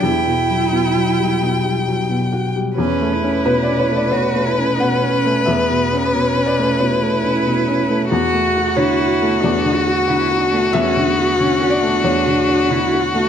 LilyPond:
<<
  \new Staff \with { instrumentName = "Violin" } { \time 4/4 \key a \mixolydian \tempo 4 = 91 g''2.~ g''8 r8 | b'1~ | b'1 | fis'1~ |
fis'1 | }
  \new Staff \with { instrumentName = "Cello" } { \time 4/4 \key a \mixolydian e'2. r4 | cis'8 e'4. fis'8 e'8 cis'4 | b4 cis'4 e'2 | fis'4 e'4 d'8 fis'8 e'8 d'8 |
cis'8 b8 cis'8 d'4. e'8 fis'8 | }
  \new Staff \with { instrumentName = "Felt piano" } { \time 4/4 \key a \mixolydian r1 | r4 b'16 d''16 cis''16 d''16 cis''4 fis''4 | e''4. d''8 cis''2 | r4 cis''4 d''4 fis''4 |
e''4. d''8 cis''2 | }
  \new Staff \with { instrumentName = "Felt piano" } { \clef bass \time 4/4 \key a \mixolydian \tuplet 3/2 { <e, g>8 b,8 fis8 b,8 fis8 g8 b,8 g8 fis8 b,8 fis'8 g8 } | \tuplet 3/2 { e,8 a8 cis'8 b,8 cis'8 a8 b,8 a8 cis'8 b,8 cis'8 a8 } | \tuplet 3/2 { e,8 b,8 cis'8 b,8 cis'8 a8 b,8 a8 cis'8 b,8 cis'8 a8 } | \tuplet 3/2 { e,8 a8 fis'8 d8 fis'8 a8 e,8 d8 fis'8 d8 fis'8 a8 } |
\tuplet 3/2 { e,8 d8 fis'8 d8 fis'8 a8 e,8 d8 fis'8 d8 fis'8 a8 } | }
>>